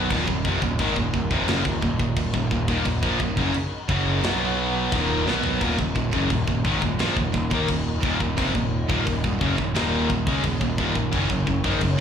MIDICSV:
0, 0, Header, 1, 9, 480
1, 0, Start_track
1, 0, Key_signature, -6, "minor"
1, 0, Tempo, 688863
1, 74, Time_signature, 4, 2, 24, 8
1, 8365, End_track
2, 0, Start_track
2, 0, Title_t, "Analog synth pad"
2, 0, Program_c, 0, 89
2, 0, Note_on_c, 0, 54, 80
2, 0, Note_on_c, 0, 63, 74
2, 0, Note_on_c, 0, 70, 87
2, 2920, Note_off_c, 0, 63, 0
2, 2920, Note_off_c, 0, 70, 0
2, 2923, Note_off_c, 0, 54, 0
2, 2944, Note_on_c, 0, 59, 69
2, 2948, Note_on_c, 0, 71, 85
2, 2952, Note_on_c, 0, 54, 80
2, 3422, Note_off_c, 0, 59, 0
2, 3423, Note_on_c, 0, 70, 82
2, 3424, Note_off_c, 0, 71, 0
2, 3425, Note_on_c, 0, 63, 72
2, 3888, Note_off_c, 0, 63, 0
2, 3889, Note_off_c, 0, 70, 0
2, 3890, Note_off_c, 0, 54, 0
2, 3896, Note_on_c, 0, 63, 72
2, 3897, Note_on_c, 0, 70, 87
2, 3898, Note_on_c, 0, 54, 76
2, 7718, Note_off_c, 0, 63, 0
2, 7718, Note_off_c, 0, 70, 0
2, 7760, Note_on_c, 0, 61, 75
2, 7762, Note_on_c, 0, 73, 91
2, 8365, Note_off_c, 0, 54, 0
2, 8365, Note_off_c, 0, 61, 0
2, 8365, Note_off_c, 0, 73, 0
2, 8365, End_track
3, 0, Start_track
3, 0, Title_t, "Distorted electric guitar"
3, 0, Program_c, 1, 30
3, 0, Note_on_c, 1, 54, 100
3, 0, Note_on_c, 1, 59, 98
3, 70, Note_off_c, 1, 54, 0
3, 70, Note_off_c, 1, 59, 0
3, 8342, Note_on_c, 1, 42, 65
3, 8365, Note_off_c, 1, 42, 0
3, 8365, End_track
4, 0, Start_track
4, 0, Title_t, "Distorted electric guitar"
4, 0, Program_c, 2, 30
4, 72, Note_on_c, 2, 39, 95
4, 77, Note_on_c, 2, 46, 110
4, 180, Note_off_c, 2, 39, 0
4, 183, Note_off_c, 2, 46, 0
4, 189, Note_on_c, 2, 39, 71
4, 191, Note_on_c, 2, 46, 70
4, 307, Note_off_c, 2, 39, 0
4, 310, Note_on_c, 2, 41, 100
4, 312, Note_off_c, 2, 46, 0
4, 319, Note_on_c, 2, 48, 112
4, 424, Note_off_c, 2, 41, 0
4, 429, Note_off_c, 2, 48, 0
4, 432, Note_on_c, 2, 39, 61
4, 435, Note_on_c, 2, 46, 69
4, 552, Note_off_c, 2, 39, 0
4, 553, Note_off_c, 2, 46, 0
4, 558, Note_on_c, 2, 44, 90
4, 559, Note_on_c, 2, 51, 94
4, 668, Note_off_c, 2, 44, 0
4, 668, Note_off_c, 2, 51, 0
4, 675, Note_on_c, 2, 39, 60
4, 676, Note_on_c, 2, 46, 67
4, 783, Note_off_c, 2, 39, 0
4, 786, Note_off_c, 2, 46, 0
4, 791, Note_on_c, 2, 39, 71
4, 795, Note_on_c, 2, 46, 76
4, 909, Note_off_c, 2, 39, 0
4, 912, Note_on_c, 2, 41, 91
4, 913, Note_off_c, 2, 46, 0
4, 918, Note_on_c, 2, 48, 89
4, 1024, Note_off_c, 2, 41, 0
4, 1027, Note_off_c, 2, 48, 0
4, 1040, Note_on_c, 2, 42, 99
4, 1041, Note_on_c, 2, 49, 105
4, 1148, Note_off_c, 2, 42, 0
4, 1149, Note_off_c, 2, 49, 0
4, 1155, Note_on_c, 2, 39, 70
4, 1160, Note_on_c, 2, 46, 84
4, 1269, Note_off_c, 2, 39, 0
4, 1275, Note_off_c, 2, 46, 0
4, 1278, Note_on_c, 2, 39, 61
4, 1284, Note_on_c, 2, 46, 75
4, 1383, Note_off_c, 2, 39, 0
4, 1387, Note_off_c, 2, 46, 0
4, 1391, Note_on_c, 2, 39, 73
4, 1395, Note_on_c, 2, 46, 71
4, 1501, Note_off_c, 2, 39, 0
4, 1506, Note_off_c, 2, 46, 0
4, 1510, Note_on_c, 2, 39, 70
4, 1515, Note_on_c, 2, 46, 72
4, 1623, Note_off_c, 2, 39, 0
4, 1625, Note_off_c, 2, 46, 0
4, 1632, Note_on_c, 2, 39, 68
4, 1634, Note_on_c, 2, 46, 81
4, 1747, Note_off_c, 2, 39, 0
4, 1750, Note_off_c, 2, 46, 0
4, 1755, Note_on_c, 2, 39, 67
4, 1758, Note_on_c, 2, 46, 75
4, 1868, Note_off_c, 2, 39, 0
4, 1872, Note_off_c, 2, 46, 0
4, 1877, Note_on_c, 2, 39, 94
4, 1880, Note_on_c, 2, 46, 105
4, 1986, Note_off_c, 2, 39, 0
4, 1988, Note_off_c, 2, 46, 0
4, 2002, Note_on_c, 2, 39, 62
4, 2005, Note_on_c, 2, 46, 73
4, 2100, Note_off_c, 2, 46, 0
4, 2109, Note_on_c, 2, 46, 97
4, 2114, Note_on_c, 2, 53, 93
4, 2116, Note_off_c, 2, 39, 0
4, 2222, Note_off_c, 2, 46, 0
4, 2225, Note_off_c, 2, 53, 0
4, 2232, Note_on_c, 2, 39, 68
4, 2235, Note_on_c, 2, 46, 65
4, 2350, Note_off_c, 2, 39, 0
4, 2353, Note_off_c, 2, 46, 0
4, 2353, Note_on_c, 2, 42, 96
4, 2358, Note_on_c, 2, 49, 103
4, 2464, Note_off_c, 2, 42, 0
4, 2467, Note_off_c, 2, 49, 0
4, 2715, Note_on_c, 2, 42, 98
4, 2722, Note_on_c, 2, 49, 110
4, 2726, Note_on_c, 2, 54, 109
4, 2945, Note_off_c, 2, 42, 0
4, 2948, Note_off_c, 2, 54, 0
4, 2949, Note_off_c, 2, 49, 0
4, 2956, Note_on_c, 2, 47, 85
4, 2956, Note_on_c, 2, 54, 97
4, 2961, Note_on_c, 2, 59, 99
4, 3426, Note_off_c, 2, 47, 0
4, 3426, Note_off_c, 2, 54, 0
4, 3429, Note_off_c, 2, 59, 0
4, 3435, Note_on_c, 2, 39, 89
4, 3436, Note_on_c, 2, 46, 92
4, 3441, Note_on_c, 2, 51, 101
4, 3665, Note_off_c, 2, 39, 0
4, 3666, Note_off_c, 2, 46, 0
4, 3669, Note_off_c, 2, 51, 0
4, 3670, Note_on_c, 2, 47, 97
4, 3675, Note_on_c, 2, 54, 97
4, 3679, Note_on_c, 2, 59, 104
4, 3903, Note_off_c, 2, 47, 0
4, 3906, Note_off_c, 2, 54, 0
4, 3908, Note_off_c, 2, 59, 0
4, 3912, Note_on_c, 2, 39, 84
4, 3918, Note_on_c, 2, 46, 102
4, 4024, Note_off_c, 2, 39, 0
4, 4027, Note_off_c, 2, 46, 0
4, 4039, Note_on_c, 2, 39, 67
4, 4042, Note_on_c, 2, 46, 73
4, 4140, Note_off_c, 2, 39, 0
4, 4148, Note_off_c, 2, 46, 0
4, 4149, Note_on_c, 2, 39, 66
4, 4156, Note_on_c, 2, 46, 80
4, 4270, Note_off_c, 2, 39, 0
4, 4274, Note_off_c, 2, 46, 0
4, 4275, Note_on_c, 2, 42, 96
4, 4279, Note_on_c, 2, 49, 91
4, 4386, Note_off_c, 2, 42, 0
4, 4388, Note_off_c, 2, 49, 0
4, 4398, Note_on_c, 2, 39, 65
4, 4402, Note_on_c, 2, 46, 75
4, 4515, Note_off_c, 2, 39, 0
4, 4517, Note_off_c, 2, 46, 0
4, 4525, Note_on_c, 2, 39, 62
4, 4528, Note_on_c, 2, 46, 61
4, 4636, Note_off_c, 2, 46, 0
4, 4638, Note_off_c, 2, 39, 0
4, 4639, Note_on_c, 2, 44, 92
4, 4645, Note_on_c, 2, 51, 92
4, 4748, Note_off_c, 2, 44, 0
4, 4751, Note_off_c, 2, 51, 0
4, 4766, Note_on_c, 2, 46, 70
4, 4767, Note_on_c, 2, 39, 55
4, 4871, Note_off_c, 2, 46, 0
4, 4879, Note_off_c, 2, 39, 0
4, 4880, Note_on_c, 2, 46, 81
4, 4886, Note_on_c, 2, 53, 95
4, 4988, Note_off_c, 2, 46, 0
4, 4992, Note_off_c, 2, 53, 0
4, 5005, Note_on_c, 2, 39, 66
4, 5008, Note_on_c, 2, 46, 79
4, 5118, Note_off_c, 2, 39, 0
4, 5120, Note_off_c, 2, 46, 0
4, 5126, Note_on_c, 2, 39, 62
4, 5130, Note_on_c, 2, 46, 72
4, 5239, Note_off_c, 2, 39, 0
4, 5241, Note_off_c, 2, 46, 0
4, 5247, Note_on_c, 2, 51, 91
4, 5254, Note_on_c, 2, 58, 100
4, 5352, Note_off_c, 2, 51, 0
4, 5356, Note_off_c, 2, 58, 0
4, 5361, Note_on_c, 2, 39, 65
4, 5362, Note_on_c, 2, 46, 65
4, 5549, Note_off_c, 2, 39, 0
4, 5549, Note_off_c, 2, 46, 0
4, 5606, Note_on_c, 2, 39, 84
4, 5612, Note_on_c, 2, 46, 106
4, 5712, Note_off_c, 2, 39, 0
4, 5715, Note_off_c, 2, 46, 0
4, 5721, Note_on_c, 2, 39, 67
4, 5723, Note_on_c, 2, 46, 73
4, 5830, Note_off_c, 2, 39, 0
4, 5833, Note_on_c, 2, 41, 91
4, 5837, Note_off_c, 2, 46, 0
4, 5840, Note_on_c, 2, 48, 100
4, 5945, Note_off_c, 2, 41, 0
4, 5949, Note_off_c, 2, 48, 0
4, 5956, Note_on_c, 2, 39, 67
4, 5958, Note_on_c, 2, 46, 73
4, 6146, Note_off_c, 2, 39, 0
4, 6148, Note_off_c, 2, 46, 0
4, 6195, Note_on_c, 2, 39, 90
4, 6198, Note_on_c, 2, 46, 112
4, 6305, Note_off_c, 2, 39, 0
4, 6308, Note_off_c, 2, 46, 0
4, 6313, Note_on_c, 2, 39, 57
4, 6318, Note_on_c, 2, 46, 66
4, 6429, Note_off_c, 2, 39, 0
4, 6435, Note_off_c, 2, 46, 0
4, 6437, Note_on_c, 2, 39, 62
4, 6443, Note_on_c, 2, 46, 73
4, 6550, Note_off_c, 2, 39, 0
4, 6553, Note_off_c, 2, 46, 0
4, 6553, Note_on_c, 2, 42, 97
4, 6556, Note_on_c, 2, 49, 110
4, 6666, Note_off_c, 2, 42, 0
4, 6667, Note_off_c, 2, 49, 0
4, 6670, Note_on_c, 2, 46, 69
4, 6671, Note_on_c, 2, 39, 64
4, 6786, Note_off_c, 2, 39, 0
4, 6789, Note_off_c, 2, 46, 0
4, 6794, Note_on_c, 2, 39, 87
4, 6798, Note_on_c, 2, 46, 102
4, 6804, Note_on_c, 2, 51, 106
4, 7020, Note_off_c, 2, 39, 0
4, 7023, Note_off_c, 2, 46, 0
4, 7028, Note_on_c, 2, 39, 73
4, 7031, Note_off_c, 2, 51, 0
4, 7031, Note_on_c, 2, 46, 75
4, 7151, Note_off_c, 2, 39, 0
4, 7152, Note_off_c, 2, 46, 0
4, 7158, Note_on_c, 2, 49, 92
4, 7164, Note_on_c, 2, 56, 97
4, 7268, Note_off_c, 2, 49, 0
4, 7272, Note_off_c, 2, 56, 0
4, 7273, Note_on_c, 2, 39, 64
4, 7280, Note_on_c, 2, 46, 75
4, 7393, Note_off_c, 2, 39, 0
4, 7393, Note_off_c, 2, 46, 0
4, 7401, Note_on_c, 2, 39, 70
4, 7402, Note_on_c, 2, 46, 82
4, 7508, Note_off_c, 2, 39, 0
4, 7510, Note_off_c, 2, 46, 0
4, 7516, Note_on_c, 2, 39, 94
4, 7519, Note_on_c, 2, 46, 99
4, 7627, Note_off_c, 2, 39, 0
4, 7629, Note_off_c, 2, 46, 0
4, 7636, Note_on_c, 2, 39, 67
4, 7638, Note_on_c, 2, 46, 71
4, 7742, Note_off_c, 2, 39, 0
4, 7744, Note_on_c, 2, 42, 92
4, 7746, Note_off_c, 2, 46, 0
4, 7749, Note_on_c, 2, 49, 100
4, 7859, Note_off_c, 2, 42, 0
4, 7861, Note_off_c, 2, 49, 0
4, 7867, Note_on_c, 2, 42, 70
4, 7869, Note_on_c, 2, 49, 71
4, 7979, Note_off_c, 2, 42, 0
4, 7983, Note_off_c, 2, 49, 0
4, 7988, Note_on_c, 2, 42, 65
4, 7991, Note_on_c, 2, 49, 76
4, 8106, Note_off_c, 2, 49, 0
4, 8108, Note_on_c, 2, 44, 91
4, 8110, Note_off_c, 2, 42, 0
4, 8111, Note_on_c, 2, 51, 105
4, 8223, Note_off_c, 2, 44, 0
4, 8225, Note_off_c, 2, 51, 0
4, 8231, Note_on_c, 2, 42, 63
4, 8232, Note_on_c, 2, 49, 66
4, 8338, Note_off_c, 2, 42, 0
4, 8341, Note_off_c, 2, 49, 0
4, 8365, End_track
5, 0, Start_track
5, 0, Title_t, "Picked electric bass"
5, 0, Program_c, 3, 34
5, 72, Note_on_c, 3, 27, 104
5, 184, Note_off_c, 3, 27, 0
5, 193, Note_on_c, 3, 27, 79
5, 304, Note_off_c, 3, 27, 0
5, 309, Note_on_c, 3, 29, 102
5, 422, Note_off_c, 3, 29, 0
5, 433, Note_on_c, 3, 27, 91
5, 544, Note_off_c, 3, 27, 0
5, 551, Note_on_c, 3, 32, 98
5, 663, Note_off_c, 3, 32, 0
5, 672, Note_on_c, 3, 27, 83
5, 783, Note_off_c, 3, 27, 0
5, 793, Note_on_c, 3, 27, 77
5, 904, Note_off_c, 3, 27, 0
5, 911, Note_on_c, 3, 29, 91
5, 1023, Note_off_c, 3, 29, 0
5, 1029, Note_on_c, 3, 30, 93
5, 1142, Note_off_c, 3, 30, 0
5, 1152, Note_on_c, 3, 27, 76
5, 1263, Note_off_c, 3, 27, 0
5, 1273, Note_on_c, 3, 27, 80
5, 1383, Note_off_c, 3, 27, 0
5, 1389, Note_on_c, 3, 27, 77
5, 1501, Note_off_c, 3, 27, 0
5, 1506, Note_on_c, 3, 27, 90
5, 1620, Note_off_c, 3, 27, 0
5, 1627, Note_on_c, 3, 27, 80
5, 1740, Note_off_c, 3, 27, 0
5, 1749, Note_on_c, 3, 27, 81
5, 1861, Note_off_c, 3, 27, 0
5, 1864, Note_on_c, 3, 27, 96
5, 1979, Note_off_c, 3, 27, 0
5, 1990, Note_on_c, 3, 27, 95
5, 2102, Note_off_c, 3, 27, 0
5, 2107, Note_on_c, 3, 34, 90
5, 2220, Note_off_c, 3, 34, 0
5, 2230, Note_on_c, 3, 27, 81
5, 2342, Note_off_c, 3, 27, 0
5, 2347, Note_on_c, 3, 30, 98
5, 2458, Note_off_c, 3, 30, 0
5, 2708, Note_on_c, 3, 30, 82
5, 2932, Note_off_c, 3, 30, 0
5, 2941, Note_on_c, 3, 35, 95
5, 3398, Note_off_c, 3, 35, 0
5, 3429, Note_on_c, 3, 27, 94
5, 3653, Note_off_c, 3, 27, 0
5, 3661, Note_on_c, 3, 35, 98
5, 3889, Note_off_c, 3, 35, 0
5, 3910, Note_on_c, 3, 27, 97
5, 4022, Note_off_c, 3, 27, 0
5, 4030, Note_on_c, 3, 27, 72
5, 4142, Note_off_c, 3, 27, 0
5, 4149, Note_on_c, 3, 27, 76
5, 4261, Note_off_c, 3, 27, 0
5, 4270, Note_on_c, 3, 30, 97
5, 4382, Note_off_c, 3, 30, 0
5, 4392, Note_on_c, 3, 27, 83
5, 4503, Note_off_c, 3, 27, 0
5, 4512, Note_on_c, 3, 27, 81
5, 4623, Note_off_c, 3, 27, 0
5, 4630, Note_on_c, 3, 32, 88
5, 4742, Note_off_c, 3, 32, 0
5, 4752, Note_on_c, 3, 27, 78
5, 4864, Note_off_c, 3, 27, 0
5, 4874, Note_on_c, 3, 34, 97
5, 4984, Note_off_c, 3, 34, 0
5, 4991, Note_on_c, 3, 27, 83
5, 5103, Note_off_c, 3, 27, 0
5, 5113, Note_on_c, 3, 27, 86
5, 5224, Note_off_c, 3, 27, 0
5, 5233, Note_on_c, 3, 39, 95
5, 5344, Note_off_c, 3, 39, 0
5, 5355, Note_on_c, 3, 27, 80
5, 5577, Note_off_c, 3, 27, 0
5, 5593, Note_on_c, 3, 27, 92
5, 5704, Note_off_c, 3, 27, 0
5, 5716, Note_on_c, 3, 27, 81
5, 5826, Note_off_c, 3, 27, 0
5, 5838, Note_on_c, 3, 29, 101
5, 5947, Note_off_c, 3, 29, 0
5, 5955, Note_on_c, 3, 27, 78
5, 6177, Note_off_c, 3, 27, 0
5, 6194, Note_on_c, 3, 27, 103
5, 6305, Note_off_c, 3, 27, 0
5, 6319, Note_on_c, 3, 27, 87
5, 6428, Note_off_c, 3, 27, 0
5, 6437, Note_on_c, 3, 27, 80
5, 6547, Note_off_c, 3, 27, 0
5, 6557, Note_on_c, 3, 30, 90
5, 6667, Note_off_c, 3, 30, 0
5, 6677, Note_on_c, 3, 27, 89
5, 6787, Note_off_c, 3, 27, 0
5, 6796, Note_on_c, 3, 27, 100
5, 7018, Note_off_c, 3, 27, 0
5, 7036, Note_on_c, 3, 27, 82
5, 7146, Note_off_c, 3, 27, 0
5, 7153, Note_on_c, 3, 37, 93
5, 7264, Note_off_c, 3, 37, 0
5, 7271, Note_on_c, 3, 27, 81
5, 7384, Note_off_c, 3, 27, 0
5, 7391, Note_on_c, 3, 27, 81
5, 7504, Note_off_c, 3, 27, 0
5, 7512, Note_on_c, 3, 27, 98
5, 7624, Note_off_c, 3, 27, 0
5, 7632, Note_on_c, 3, 27, 85
5, 7744, Note_off_c, 3, 27, 0
5, 7753, Note_on_c, 3, 30, 102
5, 7865, Note_off_c, 3, 30, 0
5, 7871, Note_on_c, 3, 30, 79
5, 7983, Note_off_c, 3, 30, 0
5, 7991, Note_on_c, 3, 30, 85
5, 8104, Note_off_c, 3, 30, 0
5, 8112, Note_on_c, 3, 32, 100
5, 8224, Note_off_c, 3, 32, 0
5, 8231, Note_on_c, 3, 30, 84
5, 8343, Note_off_c, 3, 30, 0
5, 8365, End_track
6, 0, Start_track
6, 0, Title_t, "Muted distorted electric guitar strokes"
6, 2479, Note_on_c, 9, 29, 60
6, 2549, Note_off_c, 9, 29, 0
6, 8365, End_track
7, 0, Start_track
7, 0, Title_t, "Muted overdriven electric guitar strokes"
7, 2462, Note_on_c, 9, 29, 57
7, 2532, Note_off_c, 9, 29, 0
7, 8365, End_track
8, 0, Start_track
8, 0, Title_t, "Muted picked electric bass strokes"
8, 2462, Note_on_c, 9, 29, 42
8, 2531, Note_off_c, 9, 29, 0
8, 8365, End_track
9, 0, Start_track
9, 0, Title_t, "Drums"
9, 73, Note_on_c, 9, 36, 106
9, 73, Note_on_c, 9, 49, 69
9, 142, Note_off_c, 9, 49, 0
9, 143, Note_off_c, 9, 36, 0
9, 193, Note_on_c, 9, 36, 86
9, 263, Note_off_c, 9, 36, 0
9, 313, Note_on_c, 9, 36, 104
9, 382, Note_off_c, 9, 36, 0
9, 432, Note_on_c, 9, 36, 97
9, 502, Note_off_c, 9, 36, 0
9, 549, Note_on_c, 9, 49, 59
9, 551, Note_on_c, 9, 36, 108
9, 618, Note_off_c, 9, 49, 0
9, 621, Note_off_c, 9, 36, 0
9, 671, Note_on_c, 9, 36, 89
9, 741, Note_off_c, 9, 36, 0
9, 792, Note_on_c, 9, 36, 82
9, 862, Note_off_c, 9, 36, 0
9, 911, Note_on_c, 9, 36, 110
9, 981, Note_off_c, 9, 36, 0
9, 1030, Note_on_c, 9, 49, 64
9, 1038, Note_on_c, 9, 38, 108
9, 1100, Note_off_c, 9, 49, 0
9, 1107, Note_off_c, 9, 38, 0
9, 1151, Note_on_c, 9, 36, 92
9, 1220, Note_off_c, 9, 36, 0
9, 1271, Note_on_c, 9, 36, 89
9, 1341, Note_off_c, 9, 36, 0
9, 1390, Note_on_c, 9, 36, 95
9, 1460, Note_off_c, 9, 36, 0
9, 1508, Note_on_c, 9, 49, 62
9, 1509, Note_on_c, 9, 36, 96
9, 1577, Note_off_c, 9, 49, 0
9, 1579, Note_off_c, 9, 36, 0
9, 1629, Note_on_c, 9, 36, 96
9, 1699, Note_off_c, 9, 36, 0
9, 1749, Note_on_c, 9, 36, 97
9, 1819, Note_off_c, 9, 36, 0
9, 1868, Note_on_c, 9, 36, 105
9, 1938, Note_off_c, 9, 36, 0
9, 1989, Note_on_c, 9, 36, 93
9, 1989, Note_on_c, 9, 49, 61
9, 2058, Note_off_c, 9, 36, 0
9, 2059, Note_off_c, 9, 49, 0
9, 2110, Note_on_c, 9, 36, 110
9, 2179, Note_off_c, 9, 36, 0
9, 2229, Note_on_c, 9, 36, 98
9, 2299, Note_off_c, 9, 36, 0
9, 2349, Note_on_c, 9, 36, 107
9, 2418, Note_off_c, 9, 36, 0
9, 2468, Note_on_c, 9, 49, 60
9, 2538, Note_off_c, 9, 49, 0
9, 2710, Note_on_c, 9, 36, 98
9, 2779, Note_off_c, 9, 36, 0
9, 2951, Note_on_c, 9, 49, 59
9, 2959, Note_on_c, 9, 38, 113
9, 3021, Note_off_c, 9, 49, 0
9, 3029, Note_off_c, 9, 38, 0
9, 3430, Note_on_c, 9, 36, 113
9, 3431, Note_on_c, 9, 49, 60
9, 3500, Note_off_c, 9, 36, 0
9, 3501, Note_off_c, 9, 49, 0
9, 3677, Note_on_c, 9, 38, 69
9, 3747, Note_off_c, 9, 38, 0
9, 3787, Note_on_c, 9, 43, 92
9, 3857, Note_off_c, 9, 43, 0
9, 3910, Note_on_c, 9, 36, 112
9, 3910, Note_on_c, 9, 49, 68
9, 3979, Note_off_c, 9, 49, 0
9, 3980, Note_off_c, 9, 36, 0
9, 4032, Note_on_c, 9, 36, 96
9, 4102, Note_off_c, 9, 36, 0
9, 4151, Note_on_c, 9, 36, 91
9, 4221, Note_off_c, 9, 36, 0
9, 4271, Note_on_c, 9, 36, 112
9, 4340, Note_off_c, 9, 36, 0
9, 4390, Note_on_c, 9, 49, 57
9, 4392, Note_on_c, 9, 36, 87
9, 4460, Note_off_c, 9, 49, 0
9, 4462, Note_off_c, 9, 36, 0
9, 4512, Note_on_c, 9, 36, 94
9, 4582, Note_off_c, 9, 36, 0
9, 4632, Note_on_c, 9, 36, 99
9, 4702, Note_off_c, 9, 36, 0
9, 4752, Note_on_c, 9, 36, 95
9, 4822, Note_off_c, 9, 36, 0
9, 4871, Note_on_c, 9, 49, 58
9, 4879, Note_on_c, 9, 38, 111
9, 4941, Note_off_c, 9, 49, 0
9, 4949, Note_off_c, 9, 38, 0
9, 4994, Note_on_c, 9, 36, 87
9, 5064, Note_off_c, 9, 36, 0
9, 5115, Note_on_c, 9, 36, 87
9, 5184, Note_off_c, 9, 36, 0
9, 5235, Note_on_c, 9, 36, 121
9, 5304, Note_off_c, 9, 36, 0
9, 5353, Note_on_c, 9, 49, 62
9, 5355, Note_on_c, 9, 36, 96
9, 5422, Note_off_c, 9, 49, 0
9, 5425, Note_off_c, 9, 36, 0
9, 5596, Note_on_c, 9, 36, 113
9, 5666, Note_off_c, 9, 36, 0
9, 5717, Note_on_c, 9, 36, 89
9, 5786, Note_off_c, 9, 36, 0
9, 5838, Note_on_c, 9, 36, 110
9, 5842, Note_on_c, 9, 49, 65
9, 5908, Note_off_c, 9, 36, 0
9, 5912, Note_off_c, 9, 49, 0
9, 5957, Note_on_c, 9, 36, 95
9, 6027, Note_off_c, 9, 36, 0
9, 6198, Note_on_c, 9, 36, 110
9, 6268, Note_off_c, 9, 36, 0
9, 6319, Note_on_c, 9, 36, 89
9, 6320, Note_on_c, 9, 49, 55
9, 6389, Note_off_c, 9, 36, 0
9, 6389, Note_off_c, 9, 49, 0
9, 6439, Note_on_c, 9, 36, 96
9, 6509, Note_off_c, 9, 36, 0
9, 6558, Note_on_c, 9, 36, 99
9, 6627, Note_off_c, 9, 36, 0
9, 6677, Note_on_c, 9, 36, 91
9, 6747, Note_off_c, 9, 36, 0
9, 6796, Note_on_c, 9, 49, 59
9, 6804, Note_on_c, 9, 38, 104
9, 6866, Note_off_c, 9, 49, 0
9, 6874, Note_off_c, 9, 38, 0
9, 7037, Note_on_c, 9, 36, 86
9, 7107, Note_off_c, 9, 36, 0
9, 7155, Note_on_c, 9, 36, 121
9, 7225, Note_off_c, 9, 36, 0
9, 7271, Note_on_c, 9, 49, 61
9, 7274, Note_on_c, 9, 36, 85
9, 7341, Note_off_c, 9, 49, 0
9, 7344, Note_off_c, 9, 36, 0
9, 7393, Note_on_c, 9, 36, 90
9, 7463, Note_off_c, 9, 36, 0
9, 7513, Note_on_c, 9, 36, 118
9, 7583, Note_off_c, 9, 36, 0
9, 7633, Note_on_c, 9, 36, 95
9, 7703, Note_off_c, 9, 36, 0
9, 7752, Note_on_c, 9, 49, 60
9, 7754, Note_on_c, 9, 36, 114
9, 7822, Note_off_c, 9, 49, 0
9, 7823, Note_off_c, 9, 36, 0
9, 7873, Note_on_c, 9, 36, 88
9, 7942, Note_off_c, 9, 36, 0
9, 7993, Note_on_c, 9, 36, 83
9, 8062, Note_off_c, 9, 36, 0
9, 8112, Note_on_c, 9, 36, 114
9, 8182, Note_off_c, 9, 36, 0
9, 8229, Note_on_c, 9, 49, 61
9, 8232, Note_on_c, 9, 36, 85
9, 8298, Note_off_c, 9, 49, 0
9, 8302, Note_off_c, 9, 36, 0
9, 8365, End_track
0, 0, End_of_file